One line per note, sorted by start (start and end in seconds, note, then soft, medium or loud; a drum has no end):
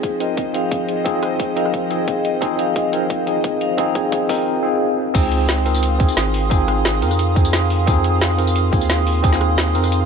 0.00 4.43 F3 medium
0.00 0.18 C4 medium
0.00 0.18 D#4 medium
0.00 0.18 F4 medium
0.00 0.19 G#4 loud
0.00 0.88 G#4 medium
0.00 4.42 C5 medium
0.00 4.43 D#5 medium
0.00 kick medium
0.00 closed hi-hat medium
0.20 0.52 C4 medium
0.20 0.52 D#4 medium
0.20 0.53 F4 medium
0.20 0.53 A#4 medium
0.20 0.37 D#5 medium
0.20 closed hi-hat medium
0.37 kick medium
0.37 closed hi-hat medium
0.53 1.03 C4 medium
0.53 1.03 D#4 medium
0.53 1.04 F4 medium
0.53 1.04 G#4 medium
0.53 0.70 F5 loud
0.53 closed hi-hat medium
0.71 kick loud
0.71 closed hi-hat loud
0.88 1.05 G#4 medium
0.88 closed hi-hat medium
1.04 1.54 C4 medium
1.04 1.55 D#4 medium
1.04 1.55 F4 medium
1.04 1.55 G#4 loud
1.04 kick medium
1.04 closed hi-hat medium
1.22 1.39 D#5 loud
1.22 cross-stick medium
1.22 closed hi-hat medium
1.40 kick medium
1.40 closed hi-hat medium
1.56 1.89 C4 medium
1.56 1.89 D#4 medium
1.56 1.89 F4 medium
1.56 1.89 A#4 medium
1.56 1.72 F5 loud
1.56 closed hi-hat medium
1.65 cross-stick soft
1.74 kick medium
1.74 closed hi-hat medium
1.90 2.39 C4 medium
1.90 2.40 D#4 medium
1.90 2.40 F4 medium
1.90 2.07 G#4 medium
1.90 2.40 G#4 medium
1.90 closed hi-hat medium
2.08 kick loud
2.08 closed hi-hat medium
2.25 2.41 D#5 loud
2.25 closed hi-hat medium
2.41 2.90 C4 loud
2.41 2.91 D#4 medium
2.41 2.91 F4 medium
2.41 2.91 G#4 loud
2.41 kick loud
2.41 closed hi-hat medium
2.59 2.74 F5 loud
2.59 closed hi-hat medium
2.76 kick loud
2.76 closed hi-hat medium
2.92 3.25 C4 medium
2.92 3.25 D#4 medium
2.92 3.25 F4 medium
2.92 3.09 G#4 medium
2.92 3.25 A#4 medium
2.92 closed hi-hat medium
3.10 kick loud
3.10 closed hi-hat medium
3.26 3.76 C4 medium
3.26 3.76 D#4 medium
3.26 3.76 F4 medium
3.26 3.77 G#4 medium
3.26 3.43 D#5 loud
3.26 closed hi-hat medium
3.44 kick loud
3.44 closed hi-hat medium
3.61 3.76 F5 loud
3.61 closed hi-hat medium
3.77 4.27 C4 loud
3.77 4.27 D#4 medium
3.77 4.28 F4 medium
3.77 4.28 G#4 loud
3.77 kick loud
3.77 closed hi-hat medium
3.95 4.11 G#4 medium
3.95 kick loud
3.95 closed hi-hat medium
4.12 kick loud
4.12 closed hi-hat medium
4.29 4.61 C4 medium
4.29 4.61 D#4 medium
4.29 4.62 F4 medium
4.29 4.62 A#4 medium
4.29 4.46 D#5 loud
4.29 kick loud
4.29 open hi-hat medium
4.63 5.12 C4 medium
4.63 5.12 D#4 medium
4.63 5.13 F4 medium
4.63 5.13 G#4 medium
5.14 6.07 C#2 loud
5.14 5.63 C4 loud
5.14 5.64 D#4 medium
5.14 5.64 F4 medium
5.14 5.64 G#4 loud
5.14 10.05 F5 medium
5.14 10.05 C6 medium
5.14 10.05 D#6 medium
5.14 kick loud
5.14 closed hi-hat medium
5.14 crash loud
5.14 tambourine soft
5.32 closed hi-hat medium
5.49 snare loud
5.49 closed hi-hat medium
5.49 tambourine soft
5.65 5.98 C4 medium
5.65 5.98 D#4 medium
5.65 5.98 F4 medium
5.65 5.98 A#4 medium
5.65 closed hi-hat medium
5.65 tambourine soft
5.74 tambourine medium
5.83 closed hi-hat loud
5.83 tambourine medium
5.99 6.48 C4 medium
5.99 6.49 D#4 medium
5.99 6.49 F4 medium
5.99 6.49 G#4 medium
5.99 kick loud
5.99 closed hi-hat medium
5.99 tambourine soft
6.09 tambourine medium
6.17 7.04 G#1 medium
6.17 snare loud
6.17 closed hi-hat loud
6.17 tambourine soft
6.34 open hi-hat medium
6.50 7.00 C4 loud
6.50 7.00 D#4 medium
6.50 7.00 F4 medium
6.50 7.01 G#4 loud
6.50 kick loud
6.50 closed hi-hat medium
6.50 tambourine soft
6.68 cross-stick medium
6.68 closed hi-hat medium
6.85 snare loud
6.85 closed hi-hat medium
6.85 tambourine soft
7.02 8.71 F2 medium
7.02 7.34 C4 medium
7.02 7.34 D#4 medium
7.02 7.34 F4 medium
7.02 7.34 A#4 medium
7.02 closed hi-hat medium
7.02 tambourine soft
7.11 cross-stick soft
7.11 tambourine medium
7.19 closed hi-hat medium
7.19 tambourine soft
7.35 7.85 C4 medium
7.35 7.85 D#4 medium
7.35 7.85 F4 medium
7.35 7.86 G#4 medium
7.35 kick loud
7.35 closed hi-hat medium
7.35 tambourine soft
7.45 tambourine medium
7.53 snare loud
7.53 closed hi-hat medium
7.53 tambourine soft
7.70 open hi-hat medium
7.86 8.36 C4 loud
7.86 8.36 D#4 medium
7.86 8.37 F4 medium
7.86 8.37 G#4 loud
7.86 kick loud
7.86 closed hi-hat medium
7.86 tambourine soft
8.04 closed hi-hat medium
8.21 snare loud
8.21 closed hi-hat medium
8.21 tambourine soft
8.38 8.70 C4 medium
8.38 8.70 D#4 medium
8.38 8.71 F4 medium
8.38 8.71 A#4 medium
8.38 closed hi-hat medium
8.38 tambourine soft
8.47 tambourine medium
8.56 closed hi-hat medium
8.56 tambourine soft
8.72 9.76 D#2 medium
8.72 9.21 C4 medium
8.72 9.22 D#4 medium
8.72 9.22 F4 medium
8.72 9.22 G#4 medium
8.72 kick loud
8.72 closed hi-hat medium
8.72 tambourine soft
8.81 tambourine medium
8.90 snare loud
8.90 closed hi-hat medium
8.90 tambourine soft
9.07 open hi-hat medium
9.23 9.72 C4 loud
9.23 9.73 D#4 medium
9.23 9.73 F4 medium
9.23 9.73 G#4 loud
9.23 kick loud
9.23 closed hi-hat medium
9.23 tambourine soft
9.33 snare soft
9.41 cross-stick medium
9.41 closed hi-hat medium
9.58 snare loud
9.58 closed hi-hat medium
9.58 tambourine soft
9.74 10.05 F2 medium
9.74 10.05 C4 medium
9.74 10.05 D#4 medium
9.74 10.05 F4 medium
9.74 10.05 A#4 medium
9.74 closed hi-hat medium
9.74 tambourine soft
9.84 cross-stick soft
9.84 tambourine medium
9.92 closed hi-hat medium
9.92 tambourine soft